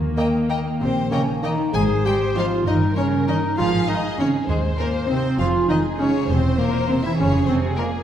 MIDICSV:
0, 0, Header, 1, 11, 480
1, 0, Start_track
1, 0, Key_signature, -4, "major"
1, 0, Tempo, 621118
1, 1349, Time_signature, 6, 3, 24, 8
1, 2295, Tempo, 599401
1, 6348, End_track
2, 0, Start_track
2, 0, Title_t, "Flute section"
2, 0, Program_c, 0, 73
2, 145, Note_on_c, 0, 79, 42
2, 191, Note_off_c, 0, 79, 0
2, 375, Note_on_c, 0, 79, 45
2, 421, Note_off_c, 0, 79, 0
2, 625, Note_on_c, 0, 79, 50
2, 849, Note_off_c, 0, 79, 0
2, 872, Note_on_c, 0, 80, 49
2, 1107, Note_off_c, 0, 80, 0
2, 1113, Note_on_c, 0, 82, 50
2, 1351, Note_off_c, 0, 82, 0
2, 6348, End_track
3, 0, Start_track
3, 0, Title_t, "Violin section"
3, 0, Program_c, 1, 48
3, 139, Note_on_c, 1, 79, 44
3, 143, Note_on_c, 1, 75, 43
3, 201, Note_off_c, 1, 79, 0
3, 204, Note_off_c, 1, 75, 0
3, 384, Note_on_c, 1, 79, 43
3, 389, Note_on_c, 1, 75, 43
3, 446, Note_off_c, 1, 79, 0
3, 451, Note_off_c, 1, 75, 0
3, 614, Note_on_c, 1, 72, 54
3, 843, Note_off_c, 1, 72, 0
3, 868, Note_on_c, 1, 73, 60
3, 870, Note_on_c, 1, 75, 46
3, 871, Note_on_c, 1, 79, 44
3, 930, Note_off_c, 1, 73, 0
3, 932, Note_off_c, 1, 75, 0
3, 933, Note_off_c, 1, 79, 0
3, 1112, Note_on_c, 1, 75, 55
3, 1112, Note_on_c, 1, 79, 39
3, 1116, Note_off_c, 1, 75, 0
3, 1116, Note_on_c, 1, 75, 43
3, 1174, Note_off_c, 1, 79, 0
3, 1178, Note_off_c, 1, 75, 0
3, 1350, Note_on_c, 1, 80, 70
3, 1412, Note_off_c, 1, 80, 0
3, 1592, Note_on_c, 1, 79, 67
3, 1654, Note_off_c, 1, 79, 0
3, 1832, Note_on_c, 1, 77, 71
3, 1893, Note_off_c, 1, 77, 0
3, 2066, Note_on_c, 1, 75, 61
3, 2128, Note_off_c, 1, 75, 0
3, 2297, Note_on_c, 1, 73, 70
3, 2361, Note_off_c, 1, 73, 0
3, 2546, Note_on_c, 1, 75, 60
3, 2610, Note_off_c, 1, 75, 0
3, 2785, Note_on_c, 1, 77, 69
3, 3021, Note_off_c, 1, 77, 0
3, 3034, Note_on_c, 1, 75, 63
3, 3270, Note_off_c, 1, 75, 0
3, 3271, Note_on_c, 1, 73, 65
3, 3335, Note_off_c, 1, 73, 0
3, 3513, Note_on_c, 1, 68, 56
3, 3577, Note_off_c, 1, 68, 0
3, 3756, Note_on_c, 1, 70, 65
3, 3820, Note_off_c, 1, 70, 0
3, 3998, Note_on_c, 1, 72, 57
3, 4229, Note_off_c, 1, 72, 0
3, 4234, Note_on_c, 1, 77, 63
3, 4298, Note_off_c, 1, 77, 0
3, 4482, Note_on_c, 1, 75, 63
3, 4546, Note_off_c, 1, 75, 0
3, 4724, Note_on_c, 1, 73, 64
3, 4953, Note_off_c, 1, 73, 0
3, 4961, Note_on_c, 1, 72, 57
3, 5195, Note_off_c, 1, 72, 0
3, 5199, Note_on_c, 1, 70, 62
3, 5432, Note_off_c, 1, 70, 0
3, 5432, Note_on_c, 1, 72, 56
3, 5544, Note_on_c, 1, 76, 61
3, 5549, Note_off_c, 1, 72, 0
3, 5664, Note_off_c, 1, 76, 0
3, 5669, Note_on_c, 1, 73, 64
3, 5897, Note_on_c, 1, 72, 57
3, 5899, Note_off_c, 1, 73, 0
3, 5961, Note_off_c, 1, 72, 0
3, 6136, Note_on_c, 1, 70, 58
3, 6200, Note_off_c, 1, 70, 0
3, 6348, End_track
4, 0, Start_track
4, 0, Title_t, "Violin section"
4, 0, Program_c, 2, 48
4, 133, Note_on_c, 2, 82, 44
4, 195, Note_off_c, 2, 82, 0
4, 383, Note_on_c, 2, 82, 44
4, 445, Note_off_c, 2, 82, 0
4, 872, Note_on_c, 2, 82, 41
4, 934, Note_off_c, 2, 82, 0
4, 1103, Note_on_c, 2, 82, 43
4, 1165, Note_off_c, 2, 82, 0
4, 1340, Note_on_c, 2, 72, 68
4, 2024, Note_off_c, 2, 72, 0
4, 2047, Note_on_c, 2, 70, 56
4, 2760, Note_off_c, 2, 70, 0
4, 2778, Note_on_c, 2, 68, 59
4, 3490, Note_off_c, 2, 68, 0
4, 3501, Note_on_c, 2, 72, 67
4, 4226, Note_off_c, 2, 72, 0
4, 4236, Note_on_c, 2, 68, 54
4, 4941, Note_off_c, 2, 68, 0
4, 4946, Note_on_c, 2, 72, 61
4, 5661, Note_on_c, 2, 68, 65
4, 5662, Note_off_c, 2, 72, 0
4, 6348, Note_off_c, 2, 68, 0
4, 6348, End_track
5, 0, Start_track
5, 0, Title_t, "Harp"
5, 0, Program_c, 3, 46
5, 0, Note_on_c, 3, 51, 49
5, 0, Note_on_c, 3, 70, 42
5, 133, Note_on_c, 3, 63, 35
5, 370, Note_off_c, 3, 70, 0
5, 379, Note_on_c, 3, 70, 41
5, 623, Note_on_c, 3, 67, 42
5, 858, Note_off_c, 3, 70, 0
5, 868, Note_on_c, 3, 70, 38
5, 1096, Note_off_c, 3, 63, 0
5, 1106, Note_on_c, 3, 63, 39
5, 1352, Note_on_c, 3, 44, 57
5, 1366, Note_off_c, 3, 51, 0
5, 1368, Note_off_c, 3, 67, 0
5, 1369, Note_off_c, 3, 70, 0
5, 1590, Note_on_c, 3, 56, 44
5, 1812, Note_off_c, 3, 63, 0
5, 1821, Note_on_c, 3, 63, 44
5, 1825, Note_on_c, 3, 72, 46
5, 2060, Note_on_c, 3, 43, 55
5, 2079, Note_off_c, 3, 72, 0
5, 2080, Note_off_c, 3, 44, 0
5, 2080, Note_off_c, 3, 56, 0
5, 2297, Note_on_c, 3, 58, 46
5, 2535, Note_off_c, 3, 63, 0
5, 2542, Note_on_c, 3, 63, 42
5, 2549, Note_on_c, 3, 73, 46
5, 2785, Note_on_c, 3, 44, 55
5, 2801, Note_off_c, 3, 43, 0
5, 2801, Note_off_c, 3, 58, 0
5, 2805, Note_off_c, 3, 73, 0
5, 3026, Note_on_c, 3, 56, 42
5, 3268, Note_on_c, 3, 72, 45
5, 3507, Note_on_c, 3, 68, 47
5, 3735, Note_off_c, 3, 72, 0
5, 3745, Note_on_c, 3, 72, 44
5, 3978, Note_off_c, 3, 63, 0
5, 3987, Note_on_c, 3, 63, 44
5, 4230, Note_on_c, 3, 41, 57
5, 4250, Note_off_c, 3, 44, 0
5, 4464, Note_off_c, 3, 56, 0
5, 4474, Note_on_c, 3, 56, 40
5, 4702, Note_off_c, 3, 63, 0
5, 4705, Note_off_c, 3, 72, 0
5, 4712, Note_on_c, 3, 63, 43
5, 4715, Note_on_c, 3, 72, 48
5, 4955, Note_on_c, 3, 40, 51
5, 4971, Note_off_c, 3, 41, 0
5, 4971, Note_off_c, 3, 63, 0
5, 4972, Note_off_c, 3, 68, 0
5, 4973, Note_off_c, 3, 56, 0
5, 5195, Note_on_c, 3, 58, 42
5, 5426, Note_off_c, 3, 72, 0
5, 5431, Note_on_c, 3, 67, 43
5, 5436, Note_on_c, 3, 72, 42
5, 5672, Note_on_c, 3, 41, 59
5, 5686, Note_off_c, 3, 40, 0
5, 5686, Note_off_c, 3, 58, 0
5, 5686, Note_off_c, 3, 67, 0
5, 5909, Note_on_c, 3, 56, 43
5, 6133, Note_off_c, 3, 72, 0
5, 6143, Note_on_c, 3, 72, 48
5, 6348, Note_off_c, 3, 41, 0
5, 6348, Note_off_c, 3, 56, 0
5, 6348, Note_off_c, 3, 72, 0
5, 6348, End_track
6, 0, Start_track
6, 0, Title_t, "Clarinet"
6, 0, Program_c, 4, 71
6, 130, Note_on_c, 4, 75, 47
6, 219, Note_off_c, 4, 75, 0
6, 376, Note_on_c, 4, 75, 38
6, 464, Note_off_c, 4, 75, 0
6, 618, Note_on_c, 4, 60, 61
6, 728, Note_off_c, 4, 60, 0
6, 854, Note_on_c, 4, 61, 57
6, 966, Note_off_c, 4, 61, 0
6, 1101, Note_on_c, 4, 63, 62
6, 1211, Note_off_c, 4, 63, 0
6, 1347, Note_on_c, 4, 68, 81
6, 1586, Note_on_c, 4, 67, 86
6, 1597, Note_off_c, 4, 68, 0
6, 1823, Note_on_c, 4, 65, 75
6, 1835, Note_off_c, 4, 67, 0
6, 2059, Note_off_c, 4, 65, 0
6, 2063, Note_on_c, 4, 63, 79
6, 2287, Note_off_c, 4, 63, 0
6, 2292, Note_on_c, 4, 61, 72
6, 2532, Note_off_c, 4, 61, 0
6, 2544, Note_on_c, 4, 63, 79
6, 2779, Note_off_c, 4, 63, 0
6, 2784, Note_on_c, 4, 65, 80
6, 2892, Note_off_c, 4, 65, 0
6, 3033, Note_on_c, 4, 63, 77
6, 3139, Note_off_c, 4, 63, 0
6, 3266, Note_on_c, 4, 61, 68
6, 3374, Note_off_c, 4, 61, 0
6, 3512, Note_on_c, 4, 56, 68
6, 3619, Note_off_c, 4, 56, 0
6, 3749, Note_on_c, 4, 58, 61
6, 3984, Note_off_c, 4, 58, 0
6, 3997, Note_on_c, 4, 60, 74
6, 4229, Note_off_c, 4, 60, 0
6, 4240, Note_on_c, 4, 65, 83
6, 4469, Note_off_c, 4, 65, 0
6, 4474, Note_on_c, 4, 63, 74
6, 4581, Note_off_c, 4, 63, 0
6, 4710, Note_on_c, 4, 61, 67
6, 4818, Note_off_c, 4, 61, 0
6, 4953, Note_on_c, 4, 60, 76
6, 5190, Note_on_c, 4, 58, 72
6, 5202, Note_off_c, 4, 60, 0
6, 5424, Note_off_c, 4, 58, 0
6, 5429, Note_on_c, 4, 60, 67
6, 5545, Note_off_c, 4, 60, 0
6, 5570, Note_on_c, 4, 64, 70
6, 5618, Note_off_c, 4, 64, 0
6, 5679, Note_on_c, 4, 61, 75
6, 5782, Note_off_c, 4, 61, 0
6, 5907, Note_on_c, 4, 60, 75
6, 6012, Note_off_c, 4, 60, 0
6, 6146, Note_on_c, 4, 58, 64
6, 6250, Note_off_c, 4, 58, 0
6, 6348, End_track
7, 0, Start_track
7, 0, Title_t, "French horn section"
7, 0, Program_c, 5, 60
7, 619, Note_on_c, 5, 60, 56
7, 846, Note_off_c, 5, 60, 0
7, 870, Note_on_c, 5, 61, 56
7, 978, Note_off_c, 5, 61, 0
7, 1101, Note_on_c, 5, 63, 59
7, 1338, Note_on_c, 5, 68, 71
7, 1340, Note_off_c, 5, 63, 0
7, 1447, Note_off_c, 5, 68, 0
7, 1578, Note_on_c, 5, 67, 69
7, 1686, Note_off_c, 5, 67, 0
7, 1822, Note_on_c, 5, 65, 68
7, 2054, Note_off_c, 5, 65, 0
7, 2058, Note_on_c, 5, 63, 62
7, 2164, Note_off_c, 5, 63, 0
7, 2299, Note_on_c, 5, 61, 64
7, 2407, Note_off_c, 5, 61, 0
7, 2555, Note_on_c, 5, 63, 63
7, 2661, Note_off_c, 5, 63, 0
7, 2790, Note_on_c, 5, 65, 64
7, 2897, Note_off_c, 5, 65, 0
7, 3025, Note_on_c, 5, 63, 59
7, 3133, Note_off_c, 5, 63, 0
7, 3259, Note_on_c, 5, 61, 65
7, 3369, Note_off_c, 5, 61, 0
7, 3505, Note_on_c, 5, 56, 59
7, 3614, Note_off_c, 5, 56, 0
7, 3751, Note_on_c, 5, 58, 58
7, 3859, Note_off_c, 5, 58, 0
7, 3978, Note_on_c, 5, 60, 63
7, 4089, Note_off_c, 5, 60, 0
7, 4222, Note_on_c, 5, 65, 64
7, 4332, Note_off_c, 5, 65, 0
7, 4470, Note_on_c, 5, 63, 62
7, 4706, Note_off_c, 5, 63, 0
7, 4722, Note_on_c, 5, 61, 61
7, 4828, Note_off_c, 5, 61, 0
7, 4957, Note_on_c, 5, 60, 54
7, 5063, Note_off_c, 5, 60, 0
7, 5179, Note_on_c, 5, 58, 55
7, 5288, Note_off_c, 5, 58, 0
7, 5425, Note_on_c, 5, 60, 63
7, 5479, Note_off_c, 5, 60, 0
7, 5534, Note_on_c, 5, 64, 55
7, 5590, Note_off_c, 5, 64, 0
7, 5660, Note_on_c, 5, 61, 65
7, 5891, Note_on_c, 5, 60, 57
7, 5894, Note_off_c, 5, 61, 0
7, 6000, Note_off_c, 5, 60, 0
7, 6141, Note_on_c, 5, 58, 60
7, 6348, Note_off_c, 5, 58, 0
7, 6348, End_track
8, 0, Start_track
8, 0, Title_t, "Viola section"
8, 0, Program_c, 6, 48
8, 0, Note_on_c, 6, 58, 63
8, 1078, Note_off_c, 6, 58, 0
8, 1824, Note_on_c, 6, 63, 60
8, 1826, Note_on_c, 6, 60, 57
8, 1999, Note_off_c, 6, 63, 0
8, 2000, Note_off_c, 6, 60, 0
8, 2539, Note_on_c, 6, 61, 54
8, 2541, Note_on_c, 6, 63, 50
8, 2719, Note_off_c, 6, 61, 0
8, 2720, Note_off_c, 6, 63, 0
8, 3263, Note_on_c, 6, 60, 55
8, 3263, Note_on_c, 6, 63, 58
8, 3443, Note_off_c, 6, 60, 0
8, 3443, Note_off_c, 6, 63, 0
8, 3981, Note_on_c, 6, 60, 51
8, 3984, Note_on_c, 6, 63, 50
8, 4164, Note_off_c, 6, 60, 0
8, 4165, Note_off_c, 6, 63, 0
8, 4710, Note_on_c, 6, 63, 54
8, 4712, Note_on_c, 6, 56, 56
8, 4889, Note_off_c, 6, 63, 0
8, 4891, Note_off_c, 6, 56, 0
8, 5426, Note_on_c, 6, 58, 55
8, 5426, Note_on_c, 6, 67, 50
8, 5603, Note_off_c, 6, 67, 0
8, 5604, Note_off_c, 6, 58, 0
8, 6146, Note_on_c, 6, 65, 55
8, 6148, Note_on_c, 6, 56, 57
8, 6318, Note_off_c, 6, 65, 0
8, 6319, Note_off_c, 6, 56, 0
8, 6348, End_track
9, 0, Start_track
9, 0, Title_t, "Bassoon"
9, 0, Program_c, 7, 70
9, 135, Note_on_c, 7, 58, 43
9, 223, Note_off_c, 7, 58, 0
9, 382, Note_on_c, 7, 58, 42
9, 469, Note_off_c, 7, 58, 0
9, 862, Note_on_c, 7, 58, 41
9, 950, Note_off_c, 7, 58, 0
9, 1104, Note_on_c, 7, 58, 40
9, 1192, Note_off_c, 7, 58, 0
9, 6348, End_track
10, 0, Start_track
10, 0, Title_t, "Cello section"
10, 0, Program_c, 8, 48
10, 0, Note_on_c, 8, 51, 65
10, 482, Note_off_c, 8, 51, 0
10, 620, Note_on_c, 8, 46, 54
10, 620, Note_on_c, 8, 48, 49
10, 682, Note_off_c, 8, 48, 0
10, 862, Note_on_c, 8, 49, 55
10, 923, Note_off_c, 8, 49, 0
10, 1104, Note_on_c, 8, 51, 58
10, 1209, Note_off_c, 8, 46, 0
10, 1342, Note_off_c, 8, 51, 0
10, 1345, Note_on_c, 8, 56, 77
10, 1407, Note_off_c, 8, 56, 0
10, 1587, Note_on_c, 8, 55, 64
10, 1649, Note_off_c, 8, 55, 0
10, 1819, Note_on_c, 8, 53, 61
10, 1881, Note_off_c, 8, 53, 0
10, 2058, Note_on_c, 8, 51, 61
10, 2289, Note_off_c, 8, 51, 0
10, 2295, Note_on_c, 8, 49, 57
10, 2533, Note_off_c, 8, 49, 0
10, 2534, Note_on_c, 8, 51, 63
10, 2598, Note_off_c, 8, 51, 0
10, 2782, Note_on_c, 8, 53, 70
10, 3019, Note_off_c, 8, 53, 0
10, 3022, Note_on_c, 8, 51, 64
10, 3086, Note_off_c, 8, 51, 0
10, 3264, Note_on_c, 8, 49, 58
10, 3328, Note_off_c, 8, 49, 0
10, 3503, Note_on_c, 8, 44, 51
10, 3740, Note_off_c, 8, 44, 0
10, 3743, Note_on_c, 8, 46, 62
10, 3807, Note_off_c, 8, 46, 0
10, 3980, Note_on_c, 8, 48, 60
10, 4220, Note_off_c, 8, 48, 0
10, 4225, Note_on_c, 8, 53, 71
10, 4289, Note_off_c, 8, 53, 0
10, 4461, Note_on_c, 8, 51, 64
10, 4525, Note_off_c, 8, 51, 0
10, 4710, Note_on_c, 8, 49, 58
10, 4946, Note_off_c, 8, 49, 0
10, 4954, Note_on_c, 8, 48, 56
10, 5018, Note_off_c, 8, 48, 0
10, 5189, Note_on_c, 8, 46, 56
10, 5422, Note_off_c, 8, 46, 0
10, 5425, Note_on_c, 8, 48, 60
10, 5473, Note_off_c, 8, 48, 0
10, 5547, Note_on_c, 8, 52, 60
10, 5663, Note_off_c, 8, 52, 0
10, 5666, Note_on_c, 8, 49, 64
10, 5901, Note_on_c, 8, 48, 62
10, 5902, Note_off_c, 8, 49, 0
10, 6132, Note_off_c, 8, 48, 0
10, 6135, Note_on_c, 8, 46, 61
10, 6199, Note_off_c, 8, 46, 0
10, 6348, End_track
11, 0, Start_track
11, 0, Title_t, "Double bass section"
11, 0, Program_c, 10, 48
11, 0, Note_on_c, 10, 39, 57
11, 482, Note_off_c, 10, 39, 0
11, 623, Note_on_c, 10, 34, 52
11, 1210, Note_off_c, 10, 34, 0
11, 1351, Note_on_c, 10, 32, 66
11, 1923, Note_off_c, 10, 32, 0
11, 2062, Note_on_c, 10, 31, 65
11, 2641, Note_off_c, 10, 31, 0
11, 2783, Note_on_c, 10, 32, 62
11, 3366, Note_off_c, 10, 32, 0
11, 3505, Note_on_c, 10, 39, 64
11, 4087, Note_off_c, 10, 39, 0
11, 4232, Note_on_c, 10, 29, 61
11, 4814, Note_off_c, 10, 29, 0
11, 4954, Note_on_c, 10, 28, 67
11, 5527, Note_off_c, 10, 28, 0
11, 5665, Note_on_c, 10, 29, 67
11, 6235, Note_off_c, 10, 29, 0
11, 6348, End_track
0, 0, End_of_file